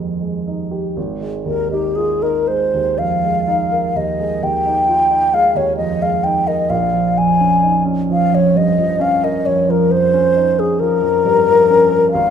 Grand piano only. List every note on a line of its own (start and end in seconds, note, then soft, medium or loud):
0.00 0.99 D#2 soft
0.00 0.21 F2 soft
0.00 0.21 G#3 soft
0.00 0.47 D#4 soft
0.00 0.98 F4 soft
0.21 0.62 G#3 soft
0.47 0.87 D#4 soft
0.71 0.96 G4 soft
0.97 3.92 G#1 soft
1.21 1.60 G#3 soft
1.45 1.85 D#2 soft
1.71 2.11 D#4 soft
1.98 2.22 F4 soft
2.22 2.63 D#4 soft
2.48 2.89 G#3 soft
2.74 3.14 D#2 soft
3.00 3.24 F2 soft
3.23 3.62 G#3 soft
3.47 3.86 D#4 soft
3.71 4.09 A#4 soft
3.95 4.33 D#2 soft
4.19 4.56 G#3 soft
4.42 4.79 D#2 soft
4.65 5.02 D#4 soft
4.89 5.11 F4 soft
5.09 5.47 D#4 soft
5.33 5.70 G#3 soft
5.55 5.92 D#2 soft
5.78 6.02 F2 soft
6.02 6.39 G#3 soft
6.25 6.62 D#4 soft
6.47 6.71 A#4 soft
6.70 9.41 A#1 soft
6.94 7.32 F3 soft
7.19 7.56 F2 soft
7.41 7.78 C#4 soft
7.63 7.87 D#4 soft
7.85 8.23 C#4 soft
8.09 8.46 F3 soft
8.32 8.68 F2 soft
8.55 8.78 G2 soft
8.79 9.15 F3 soft
9.00 9.36 C#4 soft
9.23 9.59 A#4 soft
9.47 9.82 F2 soft
9.68 10.04 F3 soft
9.92 10.27 F2 soft
10.14 10.49 C#4 soft
10.36 10.57 D#4 soft
10.59 10.93 C#4 soft
10.81 11.16 F3 soft
11.02 11.37 F2 soft
11.25 11.47 G2 soft
11.48 11.82 F3 soft
11.70 12.04 C#4 soft
11.92 12.13 A#4 soft
12.14 12.30 G#1 soft